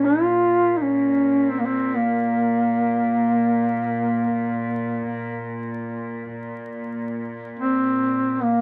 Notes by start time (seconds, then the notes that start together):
Already playing: A#2
0.05 F4
0.78 D#4
0.82 C#4
1.50 C4
1.59 A#3
1.65 C4
1.96 A#3
7.59 C4
8.43 A#3